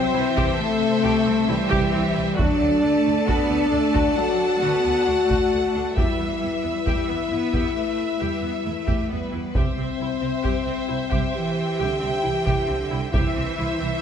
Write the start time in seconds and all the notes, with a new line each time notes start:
Already playing: F#3 C4 C5 E5
0.14 C2 E3 E4
0.36 C2 G4, taiko
0.59 C3 A3 A4
1.03 C2 G4
1.26 C2 C4
1.48 C2 E3 G3 E4 G4
1.70 C2 G4, taiko
1.93 C2 C4
2.14 C2 E4
2.35 D2 F#3 D4 F#4 A4 D5 A5, taiko
2.58 D2 A3
2.81 D2 A3 D4
3.04 D2 A3
3.26 D2 B3 D4 F#4 D5, taiko
3.48 D2 A3
3.71 D2 A3 D4
3.94 D2 F#4, taiko
4.17 F#3 F#4 F#5
4.61 D2 B3 F#4
4.84 D2 A3
5.07 D2 A3 D4
5.29 D2 F#4, taiko
5.53 D2 A3
5.75 D2 D4
5.96 E2 G3 E4 G4 B4 E5, taiko
6.19 E2 B3
6.41 E2 E4
6.63 E2 B3
6.86 E2 G3 G4, taiko
7.09 E2 B3
7.31 E2 B3 E4
7.53 E2 G4, taiko
7.76 A3
8.21 E2 G3 G4
8.42 E2 B3
8.65 E2 A3 E4
8.87 E2 G4, taiko
9.09 E2 G3 B3 B4
9.32 E2 E4
9.55 C2 C4 G4 C5 E5, taiko
9.77 C2 C4
10.00 C2 E4
10.21 C2 C4
10.44 C2 G4, taiko
10.66 C2 C4
10.88 C2 E4
11.09 C2 G4, taiko
11.33 E3 G4 G5
11.78 C2 D3 G4
12.00 C2 C4
12.22 C2 E3 E4
12.46 C2 G4, taiko
12.67 C2 D3 C4
12.91 C2 E4
13.13 C2 E3 E4 G4 C5 E5, taiko
13.36 C2 C4
13.58 C2 E4
13.79 C2 C4